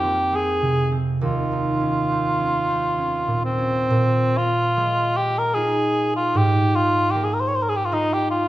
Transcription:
0.00 1.25 F2 soft
0.00 2.09 F3 soft
0.00 0.31 C4 soft
0.00 1.51 D#4 soft
0.00 0.37 G4 medium
0.04 0.53 A#3 soft
0.32 0.91 C4 soft
0.32 0.91 G#4 medium
0.62 1.25 C3 soft
0.92 1.25 C4 soft
1.21 3.94 D#2 soft
1.21 3.40 F4 soft
1.52 5.42 D#4 soft
1.81 2.39 C#4 soft
2.12 2.62 C4 soft
2.40 2.97 C#4 soft
2.69 3.19 C4 soft
2.98 3.57 C#4 soft
3.28 3.89 A#2 soft
3.45 4.39 C4 soft
3.58 6.39 C#4 soft
3.90 6.39 A#2 soft
4.38 5.19 F4 medium
4.77 8.48 G#3 soft
5.17 5.40 G4 medium
5.39 5.56 A#4 medium
5.54 7.91 D#4 soft
5.54 7.91 F4 soft
5.54 6.15 G#4 medium
6.17 6.39 F4 soft
6.35 8.48 G#2 soft
6.35 6.77 G4 medium
6.76 7.13 F4 medium
7.11 8.48 A#3 soft
7.11 7.25 G4 soft
7.24 7.35 G#4 soft
7.34 7.42 A#4 soft
7.41 7.50 C5 soft
7.48 7.57 C#5 soft
7.55 7.64 C5 soft
7.63 7.71 A#4 soft
7.69 7.78 G#4 soft
7.76 7.87 G4 soft
7.86 7.94 F4 soft
7.92 8.48 D#4 soft
7.92 8.15 D#4 medium
7.92 8.48 F4 soft
8.13 8.30 G4 medium
8.31 8.48 F4 medium

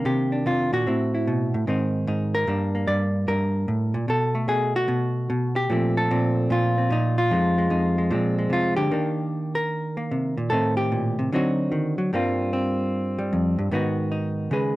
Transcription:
0.00 0.86 D#3 soft
0.00 0.85 A#3 soft
0.00 0.31 D4 soft
0.05 0.45 C3 medium
0.05 0.46 G4 medium
0.32 0.85 D4 soft
0.46 0.72 C3 medium
0.46 0.73 F4 medium
0.73 0.86 A#2 medium
0.73 2.34 F#4 medium
0.87 1.53 A2 medium
0.87 1.66 C4 soft
0.87 1.13 E4 soft
1.15 1.66 E4 soft
1.27 1.54 B2 medium
1.54 1.67 A2 medium
1.67 2.06 G#2 medium
1.67 2.47 D#3 soft
1.67 2.47 C4 soft
1.67 2.07 D#4 soft
2.07 2.46 G#2 medium
2.07 2.47 D#4 soft
2.35 3.15 A#4 medium
2.47 2.86 G2 medium
2.47 4.07 G3 soft
2.47 2.74 A#3 soft
2.47 4.08 D4 soft
2.75 4.07 A#3 soft
2.88 3.27 G2 medium
2.88 3.28 D5 medium
3.28 3.68 G2 medium
3.28 4.09 A#4 medium
3.68 3.95 A2 medium
3.94 4.08 A#2 medium
4.08 4.47 B2 medium
4.08 4.48 A4 medium
4.35 5.68 A3 soft
4.48 4.87 B2 medium
4.48 4.76 G#4 medium
4.76 5.56 F#4 medium
4.88 5.28 B2 medium
5.30 5.68 B2 medium
5.56 5.96 G4 loud
5.70 6.10 A#2 medium
5.70 7.31 F3 soft
5.70 7.29 A3 soft
5.70 6.11 C4 soft
5.97 6.51 A4 medium
6.11 6.49 A#2 medium
6.11 6.77 C4 soft
6.50 6.89 A#2 medium
6.50 7.17 F4 medium
6.78 6.91 C4 soft
6.90 7.30 A#2 medium
6.90 7.18 D#4 medium
7.18 8.51 F4 medium
7.31 7.69 F2 medium
7.31 8.09 F3 soft
7.31 7.57 G#3 soft
7.31 7.70 D#4 soft
7.58 7.97 G#3 soft
7.70 8.10 F2 medium
7.70 8.09 D#4 soft
7.98 8.11 G#3 soft
8.11 8.49 A#2 medium
8.11 8.89 F3 soft
8.11 8.37 G#3 soft
8.11 8.92 C4 soft
8.39 8.91 G#3 soft
8.50 8.77 C3 medium
8.50 8.76 F4 medium
8.77 8.91 D3 medium
8.77 9.55 G4 medium
8.91 10.50 D#3 medium
8.91 9.96 A#3 soft
8.91 10.50 D4 soft
9.55 10.49 A#4 medium
9.97 10.49 A#3 medium
10.11 10.37 C3 medium
10.37 10.51 A#2 medium
10.50 11.29 A2 medium
10.50 11.31 D#3 soft
10.50 11.34 C4 soft
10.50 11.31 D#4 soft
10.50 10.77 A4 medium
10.77 11.31 G4 medium
10.92 11.18 A#2 medium
11.19 11.32 C3 medium
11.32 12.10 D3 medium
11.32 11.71 F#3 medium
11.32 12.11 C4 medium
11.32 12.11 D#4 medium
11.32 12.12 F#4 medium
11.72 11.98 D#3 medium
11.98 12.11 F#3 medium
12.13 13.32 G2 medium
12.13 13.17 G3 medium
12.13 13.71 A#3 soft
12.13 12.52 C4 soft
12.13 13.73 F4 soft
12.53 13.72 C4 medium
13.19 13.70 G3 medium
13.33 13.58 F2 medium
13.59 13.71 G2 medium
13.71 14.50 G#2 medium
13.71 14.76 D#3 medium
13.71 14.51 B3 medium
13.71 14.11 D#4 medium
13.71 14.51 F#4 medium
14.12 14.52 D#4 medium
14.51 14.76 C#3 medium
14.51 14.76 G#3 soft
14.51 14.76 G#4 soft
14.51 14.76 B4 soft

